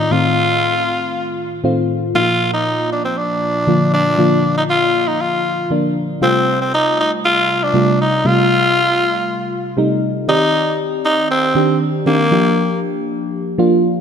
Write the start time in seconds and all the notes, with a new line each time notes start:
Already playing: A2 D#3 A3 C4 D#4 F4
0.11 A2 D#3 A3 C4 F4
1.64 A2 D#3 A3 C4 F4
2.14 A#2 F3 A#3 D#4 F4
2.22 F4
2.53 D#4
2.92 D4
3.05 C4
3.17 D4
3.67 D3 F3 A#3 F4
3.93 D4
4.18 D3 F3 A#3 F4
4.57 D#4
4.70 F4
5.08 D#4
5.21 F4
5.70 D3 F3 A#3 D4
6.21 C3 G3 A3 C4 F4
6.61 C4
6.74 D#4
7.00 D#4
7.25 F4
7.63 D4
7.74 C3 G3 A3 F4
8.01 D#4
8.25 C3 G3 A3 F4
9.77 C3 G3 A3 D#4
10.28 D#3 C4 D#4 G4 D5
11.05 D#4
11.31 C4
11.55 D#3 C4 D4 G4
12.06 D#3 A#3 C4 D4 G4
12.31 F3 A#3 D4 G4
13.58 F3 A#3 D4 F4